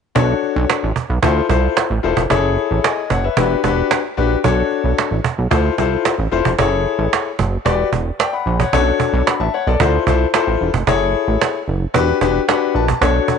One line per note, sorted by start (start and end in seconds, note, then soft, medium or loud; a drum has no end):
0.15 0.34 B1 loud
0.15 0.85 D4 medium
0.15 0.85 F#4 medium
0.15 0.85 A4 medium
0.15 0.85 C#5 medium
0.15 cajon bass loud
0.43 cajon slap soft
0.56 0.65 B1 loud
0.70 cajon slap medium
0.83 0.92 A1 medium
0.96 cajon bass medium
1.10 1.19 B1 medium
1.22 1.41 D2 loud
1.22 1.44 E4 medium
1.22 1.44 F4 medium
1.22 1.44 A4 medium
1.22 1.44 C5 medium
1.22 cajon bass loud
1.49 1.68 C2 medium
1.49 1.84 E4 medium
1.49 1.85 F4 medium
1.49 1.85 A4 medium
1.49 1.85 C5 medium
1.49 cajon bass medium
1.77 cajon slap loud
1.90 1.99 A1 medium
2.03 2.13 E1 loud
2.03 2.20 E4 medium
2.03 2.20 F4 medium
2.03 2.21 A4 medium
2.03 2.21 C5 medium
2.03 cajon slap soft
2.17 2.26 F1 medium
2.17 cajon bass loud
2.30 2.58 F#1 medium
2.30 2.99 E4 medium
2.30 2.99 G#4 medium
2.30 3.00 A4 medium
2.30 2.84 C#5 medium
2.30 cajon bass loud
2.57 cajon slap soft
2.71 2.80 A1 medium
2.84 3.10 D#5 medium
2.84 3.09 G#5 medium
2.84 cajon slap loud
3.10 3.29 F#1 medium
3.10 3.24 C#5 medium
3.10 3.23 F#5 medium
3.10 cajon bass medium
3.24 3.36 B4 medium
3.24 3.49 E5 medium
3.37 3.55 E1 loud
3.37 3.58 D4 medium
3.37 3.58 F#4 medium
3.37 3.59 G4 medium
3.37 3.59 B4 medium
3.37 cajon bass loud
3.63 3.82 E1 medium
3.63 3.98 D4 medium
3.63 3.98 F#4 medium
3.63 3.99 G4 medium
3.63 3.99 B4 medium
3.63 cajon bass medium
3.91 cajon slap loud
4.17 4.36 A#1 medium
4.17 4.35 D4 medium
4.17 4.35 F#4 medium
4.17 4.35 G4 medium
4.17 4.35 B4 medium
4.17 cajon slap soft
4.44 4.63 B1 medium
4.44 5.13 D4 medium
4.44 5.13 F#4 medium
4.44 5.14 A4 medium
4.44 5.14 C#5 medium
4.44 cajon bass loud
4.71 cajon slap soft
4.84 4.93 B1 loud
4.98 cajon slap medium
5.11 5.20 A1 medium
5.24 cajon bass medium
5.38 5.47 B1 medium
5.51 5.70 D2 loud
5.51 5.72 E4 medium
5.51 5.72 F4 medium
5.51 5.73 A4 medium
5.51 5.73 C5 medium
5.51 cajon bass loud
5.78 5.97 C2 medium
5.78 6.13 E4 medium
5.78 6.13 F4 medium
5.78 6.13 A4 medium
5.78 6.13 C5 medium
5.78 cajon bass medium
6.05 cajon slap loud
6.19 6.28 A1 medium
6.31 6.41 E1 loud
6.31 6.49 E4 medium
6.31 6.49 F4 medium
6.31 6.49 A4 medium
6.31 6.49 C5 medium
6.31 cajon slap soft
6.45 6.55 F1 medium
6.45 cajon bass medium
6.59 6.86 F#1 medium
6.59 7.28 E4 medium
6.59 7.28 G#4 medium
6.59 7.28 A4 medium
6.59 7.28 C#5 medium
6.59 cajon bass loud
6.86 cajon slap soft
6.99 7.08 A1 medium
7.13 cajon slap loud
7.39 7.57 F#1 medium
7.39 cajon bass medium
7.65 7.84 E1 medium
7.65 7.87 F#4 medium
7.65 7.87 G4 medium
7.65 7.87 B4 medium
7.65 7.87 D5 medium
7.65 cajon bass loud
7.92 8.11 E1 medium
7.92 cajon bass medium
8.19 8.32 D5 medium
8.19 8.32 G5 medium
8.19 cajon slap loud
8.33 8.58 F#5 medium
8.33 8.58 B5 medium
8.46 8.64 A#1 medium
8.46 cajon slap soft
8.60 8.73 C#5 medium
8.60 8.85 F#5 medium
8.60 cajon bass medium
8.73 8.91 B1 loud
8.73 8.79 C#4 medium
8.73 9.42 F#4 medium
8.73 9.27 A4 medium
8.73 9.27 C#5 loud
8.73 cajon bass loud
8.80 9.46 D4 medium
9.00 cajon bass medium
9.13 9.22 B1 loud
9.27 9.39 F#5 medium
9.27 9.39 B5 medium
9.27 cajon slap medium
9.40 9.49 A1 medium
9.40 9.53 E5 medium
9.40 9.53 A5 medium
9.54 9.67 C#5 medium
9.54 9.66 F#5 medium
9.67 9.76 B1 medium
9.67 9.79 A4 medium
9.67 9.92 D5 medium
9.80 9.98 D2 medium
9.80 10.02 E4 medium
9.80 10.02 F4 medium
9.80 10.02 A4 medium
9.80 10.02 C5 medium
9.80 cajon bass loud
10.07 10.25 C2 medium
10.07 10.25 E4 medium
10.07 10.24 F4 medium
10.07 10.25 A4 medium
10.07 10.25 C5 medium
10.07 cajon bass medium
10.34 10.69 E4 medium
10.34 10.69 F4 medium
10.34 10.69 A4 medium
10.34 10.69 C5 medium
10.34 cajon slap loud
10.47 10.56 A1 medium
10.61 10.70 E1 medium
10.74 10.83 F1 medium
10.74 cajon bass medium
10.87 11.15 F#1 medium
10.87 11.57 E4 medium
10.87 11.57 G#4 medium
10.87 11.57 A4 medium
10.87 11.57 C#5 loud
10.87 cajon bass loud
11.14 cajon slap soft
11.28 11.37 A1 medium
11.41 cajon slap loud
11.68 11.86 F#1 medium
11.94 12.13 E1 medium
11.94 12.15 D4 medium
11.94 12.16 F#4 medium
11.94 12.16 G4 medium
11.94 12.16 B4 loud
11.94 cajon bass loud
12.21 12.39 E1 medium
12.21 12.38 D4 medium
12.21 12.38 F#4 medium
12.21 12.39 G4 medium
12.21 12.39 B4 medium
12.21 cajon bass medium
12.48 12.83 D4 medium
12.48 12.83 F#4 medium
12.48 12.83 G4 medium
12.48 12.83 B4 medium
12.48 12.73 F#5 medium
12.48 cajon slap loud
12.75 12.93 A#1 medium
12.75 13.00 A5 medium
12.88 cajon bass loud
13.01 13.20 B1 loud
13.01 13.38 D4 medium
13.01 13.38 F#4 medium
13.01 13.38 A4 medium
13.01 13.38 C#5 medium
13.01 cajon bass loud
13.28 cajon bass medium